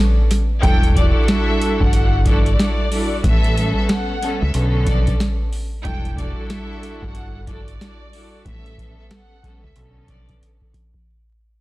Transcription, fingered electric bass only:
0.63 1.10 E1 loud
1.81 2.54 G1 medium
3.24 3.71 A1 loud
4.42 4.53 C#2 medium
4.54 5.13 B1 loud
5.85 6.32 E1 loud
7.02 7.76 G1 medium
8.46 8.93 A1 loud
9.64 9.75 C#2 loud
9.76 10.34 B1 loud

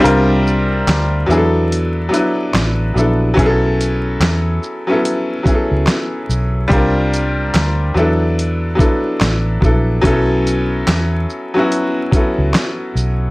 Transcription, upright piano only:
0.00 1.14 G3 loud
0.00 1.14 C4 loud
0.00 1.15 D4 loud
0.00 1.16 F4 loud
0.00 0.29 G#4 soft
0.00 0.28 E5 medium
0.04 1.16 A#4 loud
1.26 1.98 F#3 medium
1.26 1.99 B3 medium
1.26 1.99 D4 medium
1.26 2.00 E4 medium
1.31 1.38 G#4 medium
1.37 2.04 A4 loud
2.09 2.77 F#3 medium
2.09 2.78 B3 medium
2.09 2.79 D4 medium
2.09 2.79 E4 medium
2.14 2.80 B4 medium
2.94 3.28 F#3 medium
2.94 3.29 B3 medium
2.94 3.29 D4 medium
2.94 3.30 E4 medium
2.99 3.31 A4 medium
3.34 4.48 F#3 loud
3.34 4.49 B3 medium
3.34 4.49 C#4 loud
3.38 4.50 E4 medium
3.38 3.46 G#4 medium
3.46 4.54 A4 loud
4.87 5.33 F#3 medium
4.87 5.33 B3 medium
4.87 5.34 C#4 medium
4.87 5.34 E4 medium
4.92 5.35 A4 medium
5.43 6.39 F#3 medium
5.43 6.40 B3 medium
5.43 6.41 C#4 medium
5.43 6.41 E4 medium
5.48 5.55 G#4 medium
5.55 6.45 A4 medium
6.68 7.81 G3 loud
6.68 7.82 C4 medium
6.68 7.83 D4 loud
6.72 7.84 F4 loud
6.72 7.84 A#4 loud
7.94 8.65 F#3 medium
7.94 8.66 B3 medium
7.94 8.67 D4 medium
7.94 8.67 E4 medium
7.99 8.68 A4 medium
8.75 9.44 F#3 medium
8.75 9.44 B3 medium
8.75 9.45 D4 medium
8.75 9.46 E4 medium
8.80 9.46 A4 medium
9.61 9.95 F#3 medium
9.61 9.96 B3 medium
9.61 9.96 D4 medium
9.61 9.97 E4 medium
9.66 9.98 A4 medium
10.01 11.15 F#3 loud
10.01 11.16 B3 loud
10.01 11.16 C#4 loud
10.01 11.17 E4 medium
10.06 11.18 A4 loud
11.54 12.00 F#3 loud
11.54 12.00 B3 medium
11.54 12.01 C#4 medium
11.54 12.01 E4 medium
11.59 12.02 F#4 medium
12.11 13.07 F#3 medium
12.11 13.07 B3 medium
12.11 13.08 C#4 medium
12.11 13.09 E4 medium
12.16 13.09 A4 medium

